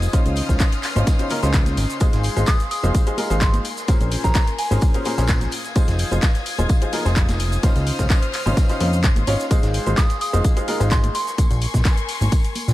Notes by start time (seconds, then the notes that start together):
Already playing: F3 D#4 F4 G#4 C5 F5 D#6 G#6
0.02 closed hi-hat, tambourine, cabasa
0.13 C#3 C#4 D#4 F4 C5 C6 F6, kick, closed hi-hat, tambourine, high conga, cabasa
0.26 C#2, closed hi-hat, tambourine, cabasa
0.36 open hi-hat, tambourine
0.48 C#2 C#3 C#4 D#4 F4 C5, kick, snare, closed hi-hat, tambourine, high conga, cabasa
0.60 kick, snare, clap, closed hi-hat, tambourine, cabasa
0.72 closed hi-hat, tambourine, cabasa
0.83 snare, clap, open hi-hat, tambourine
0.95 G#1 C#3 C#4 D#4 F4 C5, closed hi-hat, tambourine, high conga, cabasa
1.07 kick, snare, closed hi-hat, tambourine, cabasa
1.19 C#3 C#4 D#4 F4 C5, closed hi-hat, tambourine, cabasa
1.29 C#3 C#4 D#4 F4 A#4, open hi-hat, tambourine, high conga
1.43 C#2 C#3 C#4 D#4 F4 C5, snare, closed hi-hat, tambourine, cabasa
1.53 kick, snare, clap, closed hi-hat, tambourine, cabasa
1.66 snare, closed hi-hat, high conga, cabasa
1.77 G#1, open hi-hat, tambourine
1.89 snare, closed hi-hat, tambourine, cabasa
2.00 G#3 D#4 F4 G#4 C5 F5, kick, closed hi-hat, tambourine, high conga, cabasa
2.02 tambourine
2.12 G#1, snare, closed hi-hat, tambourine, cabasa
2.23 open hi-hat, tambourine
2.36 G#1 G#3 D#4 F4 G#4 C5, closed hi-hat, tambourine, high conga, cabasa
2.47 D#6, kick, snare, clap, closed hi-hat, tambourine, cabasa
2.60 snare, closed hi-hat, cabasa
2.71 D#6, open hi-hat, tambourine
2.83 F1 G#3 D#4 F4 G#4 C5, tambourine, high conga, cabasa
2.94 kick, closed hi-hat, tambourine, cabasa
3.07 G#3 D#4 F4 G#4 C5, closed hi-hat, cabasa
3.17 G#3 D#4 F4 G#4 A#4, open hi-hat, tambourine, high conga
3.30 G#1 G#3 D#4 F4 G#4 C5, tambourine, cabasa
3.41 C6, kick, snare, clap, closed hi-hat, tambourine, cabasa
3.53 closed hi-hat, high conga, cabasa
3.65 A#4 G#5, open hi-hat, tambourine
3.77 snare, closed hi-hat, tambourine, cabasa
3.88 A#2 C#4 G#4 A#4 C5, kick, closed hi-hat, tambourine, high conga, cabasa
4.01 A#1, closed hi-hat, tambourine, cabasa
4.11 open hi-hat, tambourine
4.23 A#1 A#2 C#4 G#4 A#4 C5 A#5, kick, snare, closed hi-hat, tambourine, high conga, cabasa
4.35 A#5, kick, snare, clap, closed hi-hat, tambourine, cabasa
4.47 closed hi-hat, cabasa
4.58 G#5, open hi-hat, tambourine
4.71 G#1 A#2 C#4 G#4 A#4 C5, tambourine, high conga, cabasa
4.81 kick, closed hi-hat, tambourine, cabasa
4.94 A#2 C#4 G#4 A#4 C5, closed hi-hat, cabasa
5.05 A#2 C#4 G#4 A#4 C5, open hi-hat, tambourine, high conga
5.17 A#1 A#2 C#4 G#4 A#4 C5, snare, tambourine, cabasa
5.27 kick, snare, clap, closed hi-hat, tambourine, cabasa
5.30 tambourine
5.41 snare, closed hi-hat, high conga, cabasa
5.52 F5 D#6 G#6, open hi-hat, tambourine
5.64 snare, closed hi-hat, tambourine, cabasa
5.75 F3 D#4 F4 G#4 C5, kick, closed hi-hat, tambourine, high conga, cabasa
5.88 F1, snare, closed hi-hat, tambourine, cabasa
5.99 open hi-hat, tambourine
6.11 F1 F3 D#4 F4 G#4 C5, closed hi-hat, tambourine, high conga, cabasa
6.22 kick, snare, clap, closed hi-hat, tambourine, cabasa
6.35 snare, closed hi-hat, cabasa
6.46 open hi-hat, tambourine
6.58 D#1 F3 D#4 F4 G#4 C5, tambourine, high conga, cabasa
6.69 kick, closed hi-hat, tambourine, cabasa
6.82 F3 D#4 F4 G#4 C5, closed hi-hat, cabasa
6.92 F3 D#4 F4 G#4 A#4, snare, open hi-hat, tambourine, high conga
7.05 F1 F3 D#4 F4 G#4 C5, snare, tambourine, cabasa
7.16 kick, clap, closed hi-hat, tambourine, cabasa
7.28 snare, closed hi-hat, tambourine, high conga, cabasa
7.40 snare, open hi-hat, tambourine
7.52 closed hi-hat, tambourine, cabasa
7.63 C#3 C#4 D#4 F4 C5 C6 F6, kick, snare, closed hi-hat, tambourine, high conga, cabasa
7.75 C#2, snare, closed hi-hat, tambourine, cabasa
7.86 open hi-hat, tambourine
7.99 C#2 C#3 C#4 D#4 F4 C5, kick, snare, closed hi-hat, tambourine, high conga, cabasa
8.10 kick, snare, clap, closed hi-hat, tambourine, cabasa
8.22 closed hi-hat, cabasa
8.34 clap, open hi-hat, tambourine
8.45 G#1 C#3 C#4 D#4 F4 C5, tambourine, high conga, cabasa
8.57 kick, snare, closed hi-hat, tambourine, cabasa
8.69 C#3 C#4 D#4 F4 C5, snare, closed hi-hat, cabasa
8.80 F2 C#3 C#4 D#4 F4 C5, open hi-hat, tambourine, high conga
8.93 tambourine, cabasa
9.04 kick, clap, closed hi-hat, tambourine, cabasa
9.16 G#1, closed hi-hat, high conga, cabasa
9.27 G#1 C#4 D#4 F4 C#5, open hi-hat, tambourine
9.39 snare, closed hi-hat, tambourine, cabasa
9.50 G#3 D#4 F4 G#4 C5 F5, kick, closed hi-hat, tambourine, high conga, cabasa
9.63 G#1, snare, closed hi-hat, tambourine, cabasa
9.74 open hi-hat, tambourine
9.86 G#1 G#3 D#4 F4 G#4 C5, closed hi-hat, tambourine, high conga, cabasa
9.97 D#6, kick, snare, clap, closed hi-hat, tambourine, cabasa
10.10 snare, closed hi-hat, cabasa
10.21 D#6, open hi-hat, tambourine
10.33 F1 G#3 D#4 F4 G#4 C5, tambourine, high conga, cabasa
10.44 kick, closed hi-hat, tambourine, cabasa
10.57 G#3 D#4 F4 G#4 C5, closed hi-hat, cabasa
10.68 G#3 D#4 F4 G#4 A#4, open hi-hat, tambourine, high conga
10.80 G#1 G#3 D#4 F4 G#4 C5, tambourine, cabasa
10.91 C6, kick, snare, clap, closed hi-hat, tambourine, cabasa
11.04 closed hi-hat, high conga, cabasa
11.15 A#4 G#5 C6 C#6, open hi-hat, tambourine
11.26 snare, closed hi-hat, tambourine, cabasa
11.38 kick, closed hi-hat, tambourine, high conga, cabasa
11.51 A#1, closed hi-hat, tambourine, cabasa
11.61 open hi-hat, tambourine
11.74 A#1, kick, snare, closed hi-hat, tambourine, high conga, cabasa
11.84 kick, snare, clap, closed hi-hat, tambourine, cabasa
11.97 closed hi-hat, cabasa
12.09 open hi-hat, tambourine
12.21 G#1, tambourine, high conga, cabasa
12.32 kick, closed hi-hat, tambourine, cabasa
12.44 closed hi-hat, cabasa
12.55 open hi-hat, tambourine, high conga
12.68 A#1, snare, tambourine, cabasa